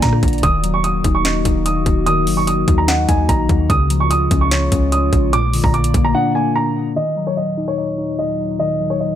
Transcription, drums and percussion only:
0.02 kick medium
0.02 snare medium
0.02 closed hi-hat medium
0.13 cross-stick medium
0.23 kick loud
0.23 closed hi-hat medium
0.28 closed hi-hat medium
0.33 closed hi-hat soft
0.38 closed hi-hat soft
0.43 kick loud
0.43 closed hi-hat medium
0.64 closed hi-hat medium
0.84 closed hi-hat medium
1.04 kick loud
1.04 closed hi-hat medium
1.25 snare loud
1.25 clap medium
1.25 closed hi-hat medium
1.45 kick medium
1.45 closed hi-hat medium
1.66 closed hi-hat medium
1.86 kick loud
1.86 closed hi-hat medium
2.07 closed hi-hat medium
2.27 open hi-hat medium
2.47 closed hi-hat medium
2.68 kick loud
2.68 closed hi-hat medium
2.88 snare loud
2.88 clap medium
2.88 closed hi-hat medium
3.09 kick medium
3.09 closed hi-hat medium
3.29 kick medium
3.29 closed hi-hat medium
3.49 kick loud
3.49 closed hi-hat medium
3.70 kick loud
3.70 closed hi-hat medium
3.90 closed hi-hat medium
4.11 closed hi-hat medium
4.31 kick loud
4.31 closed hi-hat medium
4.51 snare loud
4.51 clap medium
4.51 closed hi-hat medium
4.72 kick medium
4.72 closed hi-hat medium
4.92 closed hi-hat medium
5.13 kick loud
5.13 closed hi-hat medium
5.33 closed hi-hat medium
5.53 open hi-hat medium
5.64 kick loud
5.74 closed hi-hat soft
5.84 closed hi-hat medium
5.94 kick loud
5.94 closed hi-hat medium

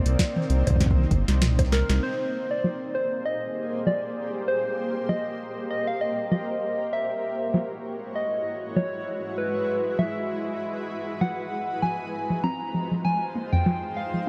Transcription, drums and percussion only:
0.06 closed hi-hat medium
0.19 kick loud
0.19 snare loud
0.19 closed hi-hat medium
0.36 high tom loud
0.50 closed hi-hat soft
0.67 kick medium
0.67 closed hi-hat medium
0.67 high bongo medium
0.70 kick medium
0.76 kick medium
0.80 kick medium
0.80 snare medium
0.80 closed hi-hat medium
0.86 kick medium
0.91 kick loud
0.98 high tom medium
1.11 kick loud
1.11 closed hi-hat soft
1.28 snare medium
1.28 closed hi-hat medium
1.42 snare loud
1.42 closed hi-hat medium
1.42 mid tom medium
1.59 kick loud
1.59 closed hi-hat medium
1.59 high bongo medium
1.72 snare loud
1.90 snare medium
1.90 closed hi-hat medium
2.34 closed hi-hat soft
2.51 closed hi-hat medium
2.64 snare loud
3.87 snare loud
5.09 snare loud
5.57 closed hi-hat soft
6.18 closed hi-hat soft
6.32 snare loud
6.79 closed hi-hat soft
7.10 closed hi-hat medium
7.41 closed hi-hat medium
7.54 snare loud
7.54 closed hi-hat medium
8.02 closed hi-hat soft
8.15 closed hi-hat medium
8.76 snare loud
8.76 closed hi-hat medium
8.94 closed hi-hat medium
9.24 closed hi-hat soft
9.38 closed hi-hat medium
9.99 snare loud
9.99 closed hi-hat medium
10.60 closed hi-hat medium
11.21 snare loud
11.21 closed hi-hat soft
11.24 closed hi-hat soft
11.27 closed hi-hat soft
11.30 closed hi-hat soft
11.32 closed hi-hat soft
11.36 closed hi-hat medium
11.38 closed hi-hat medium
11.69 closed hi-hat soft
11.82 closed hi-hat medium
12.30 closed hi-hat soft
12.44 snare loud
12.44 closed hi-hat medium
12.92 closed hi-hat soft
13.05 closed hi-hat medium
13.53 closed hi-hat soft
13.66 snare loud
13.66 closed hi-hat medium
13.83 closed hi-hat medium
14.14 closed hi-hat soft

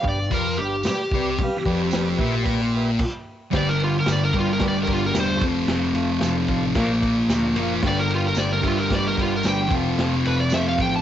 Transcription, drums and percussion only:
0.04 kick medium
0.31 kick loud
0.31 open hi-hat medium
0.83 snare loud
0.83 open hi-hat medium
0.83 tambourine loud
1.12 kick medium
1.39 kick loud
1.39 open hi-hat medium
1.66 kick medium
1.91 snare loud
1.91 open hi-hat medium
1.91 tambourine medium
2.19 kick medium
2.45 kick loud
2.45 open hi-hat medium
2.99 kick loud
2.99 crash loud
3.53 kick loud
3.53 snare loud
3.53 ride loud
3.80 ride medium
4.06 snare loud
4.06 ride loud
4.06 tambourine medium
4.33 kick medium
4.33 ride medium
4.60 kick loud
4.60 snare loud
4.60 ride medium
4.87 kick medium
4.87 ride medium
5.14 snare loud
5.14 ride loud
5.14 tambourine loud
5.41 kick loud
5.41 ride medium
5.68 snare loud
5.68 ride loud
5.95 ride medium
6.21 snare loud
6.21 ride loud
6.21 tambourine loud
6.48 kick medium
6.48 ride medium
6.75 kick loud
6.75 snare loud
6.75 ride loud
7.02 kick medium
7.02 ride medium
7.29 snare loud
7.29 ride loud
7.29 tambourine loud
7.56 ride medium
7.83 kick loud
7.83 snare loud
7.83 ride loud
8.11 ride medium
8.35 snare loud
8.35 ride loud
8.35 tambourine medium
8.63 kick medium
8.63 ride medium
8.90 kick loud
8.90 snare loud
8.90 ride loud
9.17 kick medium
9.17 ride medium
9.43 snare loud
9.43 ride loud
9.43 tambourine loud
9.71 kick loud
9.71 ride medium
9.99 snare loud
9.99 ride loud
10.25 ride medium
10.50 snare loud
10.50 ride loud
10.50 tambourine loud
10.79 kick medium
10.79 ride medium

